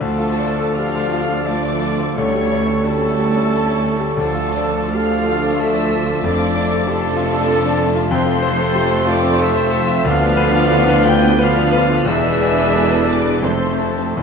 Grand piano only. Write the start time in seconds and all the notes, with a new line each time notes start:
0.01 D2
0.19 F4
0.39 D5
0.60 A4
0.78 G4
0.95 A4
1.12 F4
1.28 D4
1.45 A4
1.63 D5
1.81 A4
2.00 F4
2.18 D2
2.35 G4
2.51 C#5
2.66 A4
2.84 G4
3.02 A4
3.19 G4
3.35 C#4
3.52 A4
3.68 C#5
3.84 A4
4.00 G4
4.17 D2
4.34 F4
4.55 D5
4.74 A4
4.94 G4
5.11 A4
5.27 F4
5.43 D4
5.60 A4
5.74 D5
5.90 A4
6.05 F4
6.24 F2
6.38 F4
6.55 D5
6.72 A4
6.87 G4
7.01 A4
7.16 F4
7.33 D4
7.48 A4
7.66 D5
7.79 A4
7.95 F4
8.11 F2
8.26 F4
8.42 C5
8.60 A4
8.74 G4
8.91 A4
9.07 F4
9.23 C4
9.39 A4
9.55 C5
9.71 A4
9.87 F4
10.05 D2
10.21 F4
10.37 B4
10.55 F4
10.71 E4
10.88 B4
11.05 F4
11.22 B3
11.38 B4
11.56 F4
11.72 B4
11.90 F4
12.06 E2
12.24 D4
12.41 G#4
12.58 B4
12.76 A4
12.92 B4
13.08 D4
13.26 G#3
13.43 F2
13.61 C4
13.80 A4
13.98 C4
14.17 E2